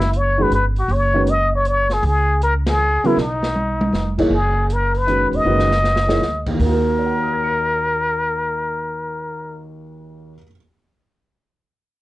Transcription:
Already playing: F#1 E4
0.00 snare
0.13 C#5, closed hi-hat
0.38 D#3 G#3 C#4 F#4 G#4
0.42 B4
0.50 G1 B4, closed hi-hat
0.76 F#4, open hi-hat
0.88 F#1 C#5, open hi-hat
1.14 D#3 G#3 C#4 F#4 B4
1.27 D#5, closed hi-hat
1.55 C#5
1.65 C#5, closed hi-hat
1.90 G#4, snare, open hi-hat
2.03 C#2 G#4, open hi-hat
2.42 A#4, closed hi-hat
2.66 G#4, snare, ride
3.04 C#3 F#3 B3 E4 A#4, muted upright bass stroke, open hi-hat
3.16 B1 D#4, snare
3.43 snare
3.56 high tom
3.81 high tom
3.92 F1, snare
4.18 E3 A#3 D#4 G#4 C#5, kick, crash
4.30 F#1 G#4
4.70 A#4, closed hi-hat
4.95 B4, open hi-hat
5.07 D#3 G#3 C#4 F#4 B4, closed hi-hat
5.32 E1 D#5, open hi-hat
5.45 F#1 D#3 G#3 C#4 F#4 B4
5.59 snare
5.71 snare
5.84 snare
5.96 snare
6.07 E3 A#3 D#4 G#4 C#5, snare
6.21 D2, snare
6.47 D#2, kick, crash
6.54 D#3
6.60 D#2 A#3 A#4, kick, open hi-hat
6.66 F#4
6.72 A#4
6.99 C#5
7.06 F#5
7.14 A#5
7.24 D#6
7.33 G#6
7.44 C#7

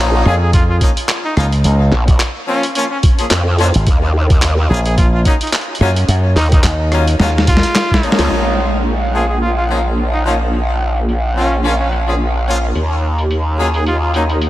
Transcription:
Already playing: F3 A#3 C#4 D#4
0.00 A#1
0.26 F2 F3 A#3 C#4 F4 G#4, cross-stick
0.41 G#4
0.53 F4, kick, closed hi-hat
0.69 F4
0.81 F3 A#3 C#4 D#4, kick, closed hi-hat
0.97 closed hi-hat
1.09 clap, closed hi-hat
1.25 D#4
1.37 C#2 F3 A#3 C#4 D#4 F4, cross-stick, closed hi-hat
1.52 closed hi-hat
1.64 C#2, closed hi-hat
1.92 A#1, clap
2.08 kick, closed hi-hat
2.20 clap, closed hi-hat
2.48 F3 A#3 C#4 F4
2.63 closed hi-hat
2.75 F3 A#3 C#4 F4, closed hi-hat
2.91 C#4
3.03 kick, closed hi-hat
3.19 F3 A#3 C#4 G#4, closed hi-hat
3.31 F2, clap, closed hi-hat
3.59 F3 A#3 C#4 F4, closed hi-hat
3.74 G#1, closed hi-hat
3.87 D#2, kick, closed hi-hat
4.30 kick, closed hi-hat
4.42 D#2, clap, closed hi-hat
4.70 A#1 F#3 A#3 C#4 F4 G#4
4.85 G#4, closed hi-hat
4.97 F4, kick, closed hi-hat
5.14 F4
5.25 F#3 A#3 C#4 D#4, kick, closed hi-hat
5.41 D#4, closed hi-hat
5.47 closed hi-hat
5.53 clap, closed hi-hat
5.61 closed hi-hat
5.75 closed hi-hat
5.81 F#2 F#3 A#3 C#4 F4, cross-stick
5.96 closed hi-hat
6.08 F#2, closed hi-hat
6.36 D#2 D#4, clap, closed hi-hat
6.39 closed hi-hat
6.42 closed hi-hat
6.44 closed hi-hat
6.46 closed hi-hat
6.50 closed hi-hat
6.52 D#4, kick, closed hi-hat
6.64 D#2, clap, closed hi-hat
6.92 F#3 A#3 C#4 F4, cross-stick, closed hi-hat
7.08 closed hi-hat
7.20 D#2 F#3 A#3 C#4 F4, snare
7.38 snare
7.47 F4, kick, closed hi-hat
7.57 snare
7.63 closed hi-hat
7.75 snare, clap, closed hi-hat
7.91 kick, snare
8.03 F3 A#3 C#4 D#4, closed hi-hat
8.12 snare
8.19 C#2, closed hi-hat
8.31 A#1
8.74 closed hi-hat
8.86 closed hi-hat
9.15 F3 A#3 C#4 F4 G#4
9.29 G#4
9.41 F4, closed hi-hat
9.57 F4
9.70 F3 A#3 C#4 D#4, closed hi-hat
9.85 closed hi-hat
9.97 closed hi-hat
10.13 D#4
10.25 F3 A#3 C#4 D#4 F4, closed hi-hat
10.41 closed hi-hat
10.53 closed hi-hat
10.97 closed hi-hat
11.09 closed hi-hat
11.36 F3 A#3 C#4 F4
11.52 closed hi-hat
11.64 F3 A#3 C#4 F4, closed hi-hat
11.80 C#4
11.92 closed hi-hat
12.08 F3 A#3 C#4 G#4, closed hi-hat
12.48 F3 A#3 C#4 F4, closed hi-hat
12.75 D#2, closed hi-hat
13.19 closed hi-hat
13.31 closed hi-hat
13.59 F#3 A#3 C#4 F4 G#4
13.74 G#4, closed hi-hat
13.86 F4, closed hi-hat
14.02 F4
14.14 F#3 A#3 C#4 D#4, closed hi-hat
14.29 D#4, closed hi-hat
14.42 closed hi-hat

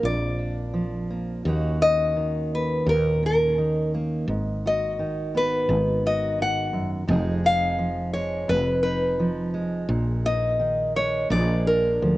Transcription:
Already playing: F3 A#3 D4 F4
0.03 A#1 F2 D5
0.39 D4
0.74 F3
1.10 A#3
1.45 D#2 D#3 A#3 C#4 F#4
1.82 C#4 D#5
2.16 D#3
2.55 B4
2.86 D#2 A#2 A#4
3.23 C#4 A#4
3.58 D#3
3.94 A#3
4.28 G#1 G#2
4.66 F#4 D#5
4.99 D#3
5.35 B3 B4
5.69 G#1 D#3
6.06 F#4 D#5
6.38 G#2 F#5
6.73 F#2
7.07 F1 F2 F3 G#3 D#4 G#4
7.44 D#4 F5
7.78 F3
8.13 G#3 C#5
8.48 F1 F2 B4
8.83 D#4 B4
9.19 F3
9.54 G#3
9.89 A#1 A#2
10.25 D#4 D#5
10.60 D#3
10.96 G#3 C#5
11.30 A#1 A#2 F3 G#3 D4 G#4 D5
11.67 D4 A#4
12.02 D2 F3

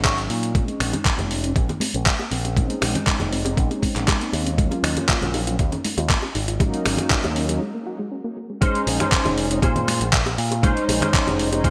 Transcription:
Already playing: G#1 F#3 A#3 C#4 D#4
0.04 F#4 A#4 C#5, kick, clap, closed hi-hat
0.18 closed hi-hat
0.29 A#2, muted clean electric guitar stroke, open hi-hat
0.43 closed hi-hat
0.54 G#3 C4 C#4 D#4, kick, closed hi-hat, high bongo, high conga
0.68 A#3, closed hi-hat
0.80 A#1 C4, finger snap, open hi-hat
0.93 C#4, closed hi-hat, high bongo, low conga
1.05 G#3, kick, clap, closed hi-hat
1.18 F1 A#3, closed hi-hat, high bongo, high conga, low conga
1.30 C4, open hi-hat
1.43 G#3 C4 C#4 D#4, closed hi-hat
1.56 A#1 G#3, kick, closed hi-hat, high bongo
1.69 A#3, closed hi-hat, low conga
1.80 C4, open hi-hat, high bongo, high conga
1.94 A#1 C#4, closed hi-hat
2.06 G#3, kick, clap, closed hi-hat
2.19 A#3, high bongo
2.31 A#1 C4, open hi-hat
2.45 C#4, closed hi-hat, high bongo
2.56 G#3 C4 C#4 D#4, kick, closed hi-hat, high conga
2.70 A#3, closed hi-hat
2.82 A#1 C4, finger snap, open hi-hat, high bongo
2.95 C#4, closed hi-hat, low conga
3.07 G#3, kick, clap, closed hi-hat, high bongo
3.20 F1 A#3, closed hi-hat, high conga, low conga
3.32 C4, open hi-hat
3.44 G#3 C4 C#4 D#4, closed hi-hat, high bongo
3.57 A#1 G#3, kick, closed hi-hat
3.70 A#3, closed hi-hat, high bongo
3.82 C4, kick, open hi-hat, high conga
3.96 A#1 C#4, clap, closed hi-hat
4.08 G#3, kick, clap, closed hi-hat, high bongo
4.21 A#3, closed hi-hat
4.33 D#2 C4, open hi-hat, high bongo
4.46 C#4, closed hi-hat
4.57 F#3 A#3 C#4 F4, kick, closed hi-hat, high conga
4.71 C#4, closed hi-hat, high bongo
4.83 D#2 D#4, finger snap, open hi-hat
4.97 F4, closed hi-hat, high bongo, low conga
5.09 A#3, kick, clap, closed hi-hat
5.21 A#1 C#4, closed hi-hat, high conga, low conga
5.34 D#4, open hi-hat, high bongo
5.47 F#3 A#3 C#4 F4, closed hi-hat
5.59 D#2 A#3, kick, closed hi-hat, high bongo
5.72 C#4, closed hi-hat, low conga
5.85 D#4, open hi-hat, high conga
5.97 D#2 F4, closed hi-hat, high bongo
6.10 A#3, kick, clap, closed hi-hat
6.22 C#4, high bongo
6.35 G#1 D#4, open hi-hat
6.48 F4, closed hi-hat
6.59 F#3 G#3 A#3 C#4 D#4, kick, closed hi-hat, high bongo, high conga
6.74 A#3, closed hi-hat
6.85 G#1 C#4, finger snap, open hi-hat, high bongo
6.98 D#4, closed hi-hat, low conga
7.10 G#3, kick, clap, closed hi-hat
7.24 D#2 A#3, closed hi-hat, high bongo, high conga, low conga
7.36 C#4, open hi-hat
7.48 F#3 A#3 C#4 D#4, closed hi-hat, high bongo
7.61 G#3
7.75 A#3
7.87 F#4
7.99 G#3
8.12 C#4
8.24 A#3
8.37 A#3
8.50 G#3
8.61 G#3 C#4 D#4 G#4 C5, kick, closed hi-hat, high bongo, high conga
8.75 closed hi-hat
8.87 A#1, open hi-hat
8.99 C#4 D#4 G#4 C5, finger snap, closed hi-hat, high bongo, low conga
9.12 kick, clap, closed hi-hat
9.25 F1, closed hi-hat, high bongo, high conga, low conga
9.38 open hi-hat
9.50 G#3 C4 C#4 D#4, closed hi-hat
9.62 A#2 C#4 D#4 G#4 C5, kick, closed hi-hat, high bongo
9.76 closed hi-hat, low conga
9.87 finger snap, open hi-hat, high bongo, high conga
10.01 A#1, closed hi-hat
10.13 kick, clap, closed hi-hat
10.26 closed hi-hat, high bongo
10.38 A#2, open hi-hat
10.51 muted clean electric guitar stroke, closed hi-hat, high bongo
10.62 G#3 C#4 D#4 G#4 C5, kick, closed hi-hat, high conga
10.77 closed hi-hat
10.89 A#1, open hi-hat, high bongo
11.01 C#4 D#4 G#4 C5, finger snap, closed hi-hat, low conga
11.14 kick, clap, closed hi-hat, high bongo
11.27 F1, closed hi-hat, high conga, low conga
11.39 open hi-hat
11.52 G#3 C#4 D#4 C5, closed hi-hat, high bongo
11.63 A#2 C#4 D#4 G#4 C5, kick, closed hi-hat

